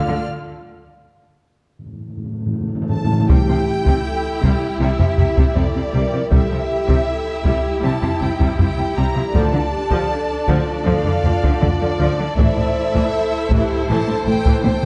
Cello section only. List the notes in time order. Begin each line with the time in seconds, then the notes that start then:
0.08 D3
3.29 C3
3.48 C3
3.86 C3
4.43 C3
4.80 C3
4.99 C3
5.18 C3
5.37 C3
5.55 C3
5.75 C3
5.94 C3
6.13 C3
6.32 C3
6.52 C3
6.89 C3
7.45 C3
7.83 C3
8.02 C3
8.21 C3
8.40 C3
8.58 C3
8.78 C3
8.96 C3
9.16 C3
9.34 D3
9.53 D3
9.91 D3
10.48 D3
10.86 D3
11.05 D3
11.24 D3
11.43 D3
11.62 D3
11.81 D3
12.00 D3
12.19 D3
12.37 A2
12.56 A2
12.94 A2
13.51 A2
13.89 A2
14.07 A2
14.26 A2
14.45 A2
14.64 A2